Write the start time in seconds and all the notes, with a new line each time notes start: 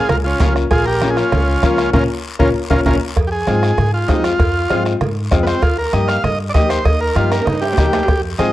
Already playing: G#4
0.09 C#2 F4 A#4, bombo rim, cowbell, high conga, low conga, long guiro
0.24 C#4 F4
0.40 C#2 A#3 C#4 F4, bombo low, bombo rim, cowbell, high conga, low conga, low timbale, short guiro
0.56 bombo rim, short guiro
0.71 A#1 F4 G#4, bombo low, bombo rim, cowbell, long guiro
0.85 G4 A#4
1.01 A#3 C#4 F4, bombo rim, cowbell, high conga, short guiro
1.10 G#4
1.17 C#4 F4, bombo rim, short guiro
1.32 C#2, bombo rim, cowbell, high conga, low conga, long guiro
1.63 C#2 A#3 C#4 F4, bombo low, bombo rim, cowbell, high conga, short guiro
1.78 bombo rim, short guiro
1.93 A#1 A#3 C#4 F4 A#4, bombo low, low conga, high timbale, long guiro
2.39 A#1 A#3 C#4 F4 A#4, bombo low, low conga, high timbale, long guiro
2.70 A#1 A#3 C#4 F4 A#4, bombo low, low conga, high timbale, long guiro
2.86 A#1 A#3 C#4 F4 A#4, bombo low, low conga, high timbale, long guiro
3.16 F2, bombo low, bombo rim, cowbell, high conga, long guiro
3.27 G4
3.32 G#4
3.47 G#2 G#3 C4 F4, bombo rim, cowbell, high conga, short guiro
3.63 bombo rim, short guiro
3.78 G#2, bombo rim, cowbell, high conga, low conga, long guiro
3.94 F4
4.08 F2 G#3 C4 D#4 F4, bombo low, bombo rim, cowbell, high conga, low timbale, short guiro
4.24 F4, bombo rim, short guiro
4.39 F2, bombo low, bombo rim, cowbell, high conga, long guiro
4.70 G#2 G#3 C4 F4, bombo rim, cowbell, high conga, short guiro
4.85 bombo rim, short guiro
5.01 G#2, bombo rim, cowbell, high conga, low conga, long guiro
5.31 F2 G#3 C4 F4, bombo low, bombo rim, cowbell, high conga, low conga, short guiro
5.43 B3, short guiro
5.47 C4, bombo rim
5.62 D#2 F4, bombo low, bombo rim, cowbell, high conga, long guiro
5.78 A#4
5.93 G2 A#3 D#4 G4 D#5, bombo rim, cowbell, high conga, short guiro
6.08 F5, bombo rim, short guiro
6.23 G2 D#5, bombo rim, cowbell, high conga, low conga, long guiro
6.50 D5
6.54 D#2 A#3 D#4 G4 D#5, bombo low, bombo rim, cowbell, high conga, low timbale, short guiro
6.69 C5, bombo rim, short guiro
6.85 D#2 D#5, bombo low, bombo rim, cowbell, high conga, long guiro
7.00 A#4
7.15 G2 A#3 D#4 F4 G4, bombo rim, cowbell, high conga, short guiro
7.31 A#4, bombo rim, high timbale, short guiro
7.42 D#4, high timbale
7.47 G2, bombo rim, cowbell, high conga, low conga, long guiro
7.52 high timbale
7.61 G4, high timbale
7.73 low timbale
7.77 D#2 A#3 D#4 G4, bombo low, bombo rim, cowbell, high conga, low conga, short guiro
7.83 low timbale
7.93 bombo rim, low timbale, short guiro
8.03 low timbale
8.08 F2, bombo low, bombo rim, cowbell, high conga, long guiro
8.39 G#2 C4 F4 G#4 D#5, bombo rim, cowbell, high conga, short guiro